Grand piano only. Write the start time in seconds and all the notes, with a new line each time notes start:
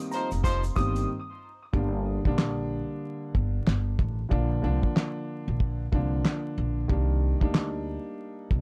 Already playing: D#3 G3 A#3 C4
0.76 D#3 G3 A#3 C4
1.73 D3 G3 A#3 D4
2.25 D3 G3 A#3 D4
4.29 D3 F3 A#3 D4
4.62 D3 F3 A#3 D4
5.92 D3 F3 A#3 D4
6.88 D#3 G3 A#3 D4
7.40 G3 A#3 D4 D#4